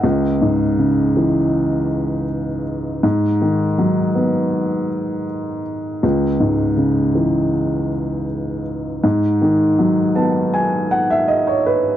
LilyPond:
<<
  \new Staff \with { instrumentName = "Upright piano" } { \time 4/4 \key cis \minor \tempo 4 = 80 r1 | r1 | r1 | r4. a''8 gis''8 fis''16 e''16 dis''16 cis''16 b'8 | }
  \new Staff \with { instrumentName = "Upright piano" } { \clef bass \time 4/4 \key cis \minor cis,8 gis,8 cis8 e2 r8 | gis,8 dis8 fis8 b2 r8 | cis,8 gis,8 cis8 e2 r8 | gis,8 dis8 fis8 b2 r8 | }
>>